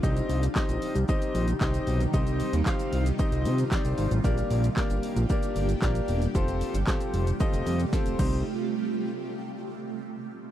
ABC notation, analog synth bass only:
X:1
M:4/4
L:1/16
Q:1/4=114
K:Cdor
V:1 name="Analog synth bass" clef=bass
C,,2 C,,2 z B,,, z C,, z2 B,,,2 C,,2 =B,,,2 | C,,3 E,, z2 C,,2 z C,, C,2 z C,, _A,,, =A,,, | B,,,2 B,,,2 z G,,, z B,,, z2 G,,,2 B,,,2 =E,,,2 | F,,,3 G,,, z2 F,,,2 z F,,, F,,2 z F,,, C,,2 |
z16 |]